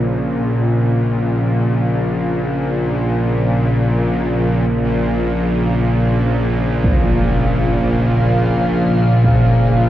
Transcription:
0, 0, Header, 1, 5, 480
1, 0, Start_track
1, 0, Key_signature, -5, "minor"
1, 0, Tempo, 500000
1, 9497, End_track
2, 0, Start_track
2, 0, Title_t, "Ambient pad"
2, 0, Program_c, 0, 92
2, 6584, Note_on_c, 0, 77, 78
2, 9497, Note_off_c, 0, 77, 0
2, 9497, End_track
3, 0, Start_track
3, 0, Title_t, "Analog synth pad"
3, 0, Program_c, 1, 89
3, 0, Note_on_c, 1, 46, 70
3, 0, Note_on_c, 1, 49, 75
3, 0, Note_on_c, 1, 53, 86
3, 9497, Note_off_c, 1, 46, 0
3, 9497, Note_off_c, 1, 49, 0
3, 9497, Note_off_c, 1, 53, 0
3, 9497, End_track
4, 0, Start_track
4, 0, Title_t, "Synth drone"
4, 0, Program_c, 2, 95
4, 0, Note_on_c, 2, 34, 66
4, 0, Note_on_c, 2, 46, 74
4, 9497, Note_off_c, 2, 34, 0
4, 9497, Note_off_c, 2, 46, 0
4, 9497, End_track
5, 0, Start_track
5, 0, Title_t, "Impact"
5, 0, Program_c, 3, 103
5, 6568, Note_on_c, 3, 60, 65
5, 6797, Note_off_c, 3, 60, 0
5, 8873, Note_on_c, 3, 60, 43
5, 9102, Note_off_c, 3, 60, 0
5, 9497, End_track
0, 0, End_of_file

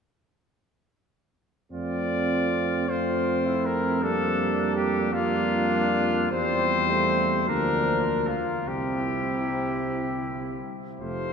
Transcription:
0, 0, Header, 1, 6, 480
1, 0, Start_track
1, 0, Key_signature, -1, "major"
1, 0, Tempo, 776197
1, 1062, Time_signature, 6, 3, 24, 8
1, 2022, Tempo, 750000
1, 3462, Tempo, 783290
1, 7021, End_track
2, 0, Start_track
2, 0, Title_t, "Trumpet"
2, 0, Program_c, 0, 56
2, 1068, Note_on_c, 0, 74, 59
2, 1785, Note_on_c, 0, 72, 48
2, 1795, Note_off_c, 0, 74, 0
2, 2267, Note_on_c, 0, 70, 56
2, 2276, Note_off_c, 0, 72, 0
2, 2504, Note_off_c, 0, 70, 0
2, 2508, Note_on_c, 0, 69, 64
2, 2968, Note_off_c, 0, 69, 0
2, 2972, Note_on_c, 0, 67, 56
2, 3211, Note_on_c, 0, 65, 68
2, 3221, Note_off_c, 0, 67, 0
2, 3944, Note_off_c, 0, 65, 0
2, 3948, Note_on_c, 0, 72, 65
2, 4648, Note_off_c, 0, 72, 0
2, 4664, Note_on_c, 0, 70, 59
2, 5147, Note_on_c, 0, 65, 46
2, 5156, Note_off_c, 0, 70, 0
2, 5396, Note_on_c, 0, 67, 45
2, 5406, Note_off_c, 0, 65, 0
2, 6585, Note_off_c, 0, 67, 0
2, 6816, Note_on_c, 0, 72, 55
2, 7021, Note_off_c, 0, 72, 0
2, 7021, End_track
3, 0, Start_track
3, 0, Title_t, "Trumpet"
3, 0, Program_c, 1, 56
3, 1063, Note_on_c, 1, 65, 37
3, 1761, Note_off_c, 1, 65, 0
3, 1789, Note_on_c, 1, 65, 37
3, 2146, Note_on_c, 1, 64, 36
3, 2155, Note_off_c, 1, 65, 0
3, 2506, Note_on_c, 1, 62, 45
3, 2515, Note_off_c, 1, 64, 0
3, 3211, Note_off_c, 1, 62, 0
3, 3215, Note_on_c, 1, 62, 48
3, 3937, Note_off_c, 1, 62, 0
3, 3951, Note_on_c, 1, 60, 46
3, 4663, Note_on_c, 1, 62, 37
3, 4672, Note_off_c, 1, 60, 0
3, 5215, Note_off_c, 1, 62, 0
3, 5396, Note_on_c, 1, 64, 35
3, 6601, Note_off_c, 1, 64, 0
3, 6821, Note_on_c, 1, 65, 39
3, 7021, Note_off_c, 1, 65, 0
3, 7021, End_track
4, 0, Start_track
4, 0, Title_t, "French horn"
4, 0, Program_c, 2, 60
4, 1065, Note_on_c, 2, 60, 36
4, 1762, Note_off_c, 2, 60, 0
4, 1785, Note_on_c, 2, 60, 41
4, 2508, Note_on_c, 2, 58, 46
4, 2518, Note_off_c, 2, 60, 0
4, 3216, Note_off_c, 2, 58, 0
4, 3218, Note_on_c, 2, 58, 51
4, 3939, Note_off_c, 2, 58, 0
4, 3950, Note_on_c, 2, 55, 44
4, 4308, Note_on_c, 2, 57, 39
4, 4317, Note_off_c, 2, 55, 0
4, 4670, Note_on_c, 2, 58, 40
4, 4679, Note_off_c, 2, 57, 0
4, 5219, Note_off_c, 2, 58, 0
4, 5396, Note_on_c, 2, 60, 35
4, 6601, Note_off_c, 2, 60, 0
4, 6826, Note_on_c, 2, 57, 40
4, 7021, Note_off_c, 2, 57, 0
4, 7021, End_track
5, 0, Start_track
5, 0, Title_t, "Euphonium"
5, 0, Program_c, 3, 58
5, 1065, Note_on_c, 3, 57, 36
5, 1762, Note_off_c, 3, 57, 0
5, 1786, Note_on_c, 3, 57, 36
5, 2503, Note_on_c, 3, 55, 45
5, 2513, Note_off_c, 3, 57, 0
5, 3208, Note_off_c, 3, 55, 0
5, 3212, Note_on_c, 3, 55, 49
5, 3935, Note_off_c, 3, 55, 0
5, 3947, Note_on_c, 3, 55, 44
5, 4663, Note_on_c, 3, 53, 40
5, 4672, Note_off_c, 3, 55, 0
5, 5215, Note_off_c, 3, 53, 0
5, 5392, Note_on_c, 3, 48, 34
5, 6599, Note_off_c, 3, 48, 0
5, 6824, Note_on_c, 3, 48, 41
5, 7021, Note_off_c, 3, 48, 0
5, 7021, End_track
6, 0, Start_track
6, 0, Title_t, "Tuba"
6, 0, Program_c, 4, 58
6, 1064, Note_on_c, 4, 41, 35
6, 3928, Note_off_c, 4, 41, 0
6, 3949, Note_on_c, 4, 40, 47
6, 4649, Note_off_c, 4, 40, 0
6, 4664, Note_on_c, 4, 38, 39
6, 5205, Note_off_c, 4, 38, 0
6, 5391, Note_on_c, 4, 36, 34
6, 6598, Note_off_c, 4, 36, 0
6, 6821, Note_on_c, 4, 29, 40
6, 7021, Note_off_c, 4, 29, 0
6, 7021, End_track
0, 0, End_of_file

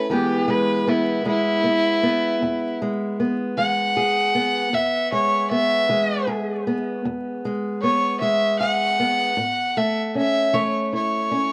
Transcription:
0, 0, Header, 1, 3, 480
1, 0, Start_track
1, 0, Key_signature, 4, "major"
1, 0, Tempo, 773196
1, 57, Time_signature, 12, 3, 24, 8
1, 7154, End_track
2, 0, Start_track
2, 0, Title_t, "Fiddle"
2, 0, Program_c, 0, 110
2, 0, Note_on_c, 0, 71, 74
2, 64, Note_off_c, 0, 71, 0
2, 76, Note_on_c, 0, 67, 77
2, 309, Note_on_c, 0, 71, 85
2, 318, Note_off_c, 0, 67, 0
2, 548, Note_on_c, 0, 64, 78
2, 557, Note_off_c, 0, 71, 0
2, 774, Note_off_c, 0, 64, 0
2, 795, Note_on_c, 0, 64, 100
2, 1718, Note_off_c, 0, 64, 0
2, 2220, Note_on_c, 0, 78, 99
2, 2943, Note_on_c, 0, 76, 85
2, 2953, Note_off_c, 0, 78, 0
2, 3171, Note_off_c, 0, 76, 0
2, 3182, Note_on_c, 0, 73, 85
2, 3410, Note_off_c, 0, 73, 0
2, 3419, Note_on_c, 0, 76, 101
2, 3881, Note_off_c, 0, 76, 0
2, 4851, Note_on_c, 0, 73, 83
2, 5085, Note_off_c, 0, 73, 0
2, 5093, Note_on_c, 0, 76, 79
2, 5327, Note_off_c, 0, 76, 0
2, 5332, Note_on_c, 0, 78, 96
2, 6064, Note_on_c, 0, 76, 79
2, 6074, Note_off_c, 0, 78, 0
2, 6294, Note_off_c, 0, 76, 0
2, 6305, Note_on_c, 0, 76, 94
2, 6540, Note_on_c, 0, 73, 83
2, 6550, Note_off_c, 0, 76, 0
2, 6773, Note_off_c, 0, 73, 0
2, 6793, Note_on_c, 0, 73, 83
2, 7154, Note_off_c, 0, 73, 0
2, 7154, End_track
3, 0, Start_track
3, 0, Title_t, "Steel-string acoustic guitar"
3, 0, Program_c, 1, 25
3, 0, Note_on_c, 1, 64, 55
3, 61, Note_on_c, 1, 40, 67
3, 68, Note_on_c, 1, 52, 59
3, 70, Note_on_c, 1, 56, 57
3, 73, Note_on_c, 1, 59, 60
3, 295, Note_off_c, 1, 56, 0
3, 297, Note_on_c, 1, 56, 58
3, 490, Note_off_c, 1, 40, 0
3, 540, Note_off_c, 1, 59, 0
3, 542, Note_on_c, 1, 59, 57
3, 773, Note_off_c, 1, 52, 0
3, 776, Note_off_c, 1, 56, 0
3, 776, Note_on_c, 1, 52, 59
3, 779, Note_on_c, 1, 56, 56
3, 1014, Note_off_c, 1, 59, 0
3, 1016, Note_on_c, 1, 59, 51
3, 1207, Note_off_c, 1, 52, 0
3, 1258, Note_off_c, 1, 59, 0
3, 1260, Note_on_c, 1, 59, 55
3, 1505, Note_on_c, 1, 40, 68
3, 1735, Note_off_c, 1, 56, 0
3, 1750, Note_on_c, 1, 56, 56
3, 1931, Note_off_c, 1, 40, 0
3, 1976, Note_off_c, 1, 59, 0
3, 1985, Note_on_c, 1, 59, 49
3, 2214, Note_off_c, 1, 56, 0
3, 2218, Note_on_c, 1, 52, 55
3, 2221, Note_on_c, 1, 56, 52
3, 2457, Note_off_c, 1, 64, 0
3, 2461, Note_on_c, 1, 68, 58
3, 2647, Note_off_c, 1, 52, 0
3, 2692, Note_off_c, 1, 59, 0
3, 2700, Note_on_c, 1, 59, 54
3, 2908, Note_off_c, 1, 56, 0
3, 2908, Note_off_c, 1, 68, 0
3, 2937, Note_on_c, 1, 40, 67
3, 3180, Note_on_c, 1, 56, 57
3, 3367, Note_off_c, 1, 40, 0
3, 3414, Note_off_c, 1, 59, 0
3, 3421, Note_on_c, 1, 59, 58
3, 3653, Note_off_c, 1, 56, 0
3, 3656, Note_on_c, 1, 52, 50
3, 3660, Note_on_c, 1, 56, 54
3, 3894, Note_on_c, 1, 68, 58
3, 4086, Note_off_c, 1, 52, 0
3, 4133, Note_off_c, 1, 59, 0
3, 4140, Note_on_c, 1, 59, 57
3, 4378, Note_on_c, 1, 40, 64
3, 4617, Note_off_c, 1, 56, 0
3, 4625, Note_on_c, 1, 56, 52
3, 4808, Note_off_c, 1, 40, 0
3, 4857, Note_off_c, 1, 59, 0
3, 4864, Note_on_c, 1, 59, 48
3, 5096, Note_off_c, 1, 56, 0
3, 5100, Note_on_c, 1, 52, 48
3, 5104, Note_on_c, 1, 56, 54
3, 5334, Note_off_c, 1, 68, 0
3, 5341, Note_on_c, 1, 68, 54
3, 5530, Note_off_c, 1, 52, 0
3, 5577, Note_off_c, 1, 59, 0
3, 5584, Note_on_c, 1, 59, 53
3, 5790, Note_off_c, 1, 68, 0
3, 5792, Note_off_c, 1, 56, 0
3, 5816, Note_on_c, 1, 45, 68
3, 5820, Note_off_c, 1, 59, 0
3, 6064, Note_on_c, 1, 57, 52
3, 6250, Note_off_c, 1, 45, 0
3, 6302, Note_on_c, 1, 61, 55
3, 6538, Note_on_c, 1, 52, 55
3, 6540, Note_off_c, 1, 57, 0
3, 6543, Note_on_c, 1, 57, 53
3, 6783, Note_on_c, 1, 64, 51
3, 6972, Note_off_c, 1, 52, 0
3, 7021, Note_off_c, 1, 61, 0
3, 7023, Note_on_c, 1, 61, 53
3, 7154, Note_off_c, 1, 57, 0
3, 7154, Note_off_c, 1, 61, 0
3, 7154, Note_off_c, 1, 64, 0
3, 7154, End_track
0, 0, End_of_file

